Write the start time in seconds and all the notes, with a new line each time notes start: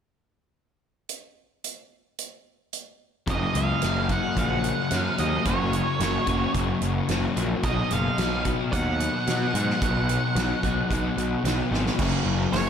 1.09 closed hi-hat
1.64 closed hi-hat
2.19 closed hi-hat
2.73 closed hi-hat
3.27 F#1 F#2 C#3 F#3 A#3 C#4 F#4 D#5, kick, closed hi-hat
3.54 C#2 F#3 A#3 C#4 F#4 F5, closed hi-hat
3.82 F#1 F#3 A#3 C#4 F#4, snare, closed hi-hat
4.09 F#3 A#3 C#4 F#4 F#5, kick, closed hi-hat
4.36 A#1 F#2 C#3 F#3 A#3 C#4 F#4 F#5, kick, closed hi-hat
4.63 F#3 A#3 C#4 F#4, closed hi-hat
4.90 F#2 F#3 A#3 C#4 F#4, snare, closed hi-hat
4.96 F5
5.17 D#2 F#3 A#3 C#4 F#4 D#5, closed hi-hat
5.44 F#1 F#2 C#3 F#3 A#3 C#4 F#4 C#5, kick, closed hi-hat
5.71 F#3 A#3 C#4 F#4, closed hi-hat
6.00 F#1 F#3 A#3 C#4 F#4, snare, closed hi-hat
6.26 F#1 F#3 A#3 C#4 F#4, kick, closed hi-hat
6.54 F#1 F#2 C#3 F#3 A#3 C#4 F#4, kick, closed hi-hat
6.82 F#1 F#3 A#3 C#4 F#4, closed hi-hat
7.08 F#1 F#3 A#3 C#4 F#4, snare, closed hi-hat
7.36 A#1 F#3 A#3 C#4 F#4, closed hi-hat
7.63 B1 B2 D#3 F#3 B3 C#4 D#4 F#4 D#5, kick, closed hi-hat
7.91 F#1 B3 D#4 F#4 F5, closed hi-hat
8.18 B1 F#3 B3 D#4 F#4, snare, closed hi-hat
8.45 B3 D#4 F#4, kick, closed hi-hat
8.72 D#2 B2 F#3 B3 D#4 F#4 F#5, kick, closed hi-hat
9.00 B3 D#4 F#4, closed hi-hat
9.27 B2 F#3 B3 D#4 F#4, snare, closed hi-hat
9.54 G#2 B3 D#4 F#4, closed hi-hat
9.70 snare
9.81 B1 B2 D#3 F#3 B3 C#4 D#4 F#4, kick, closed hi-hat
10.09 B3 D#4 F#4, closed hi-hat
10.35 B1 F#3 B3 D#4 F#4, snare, closed hi-hat
10.63 B1 B3 D#4 F#4, kick, closed hi-hat
10.90 B1 B2 F#3 B3 D#4 F#4, kick, closed hi-hat
11.17 B1 B3 D#4 F#4, closed hi-hat
11.44 B1 F#3 B3 D#4 F#4, snare, closed hi-hat
11.71 G#1 B3 D#4 F#4, snare
11.87 snare
11.98 F#1 F#2 C#3 F#3 A#3 C#4 F#4, kick, crash
12.25 F#1
12.52 F#1 C#5, snare, open hi-hat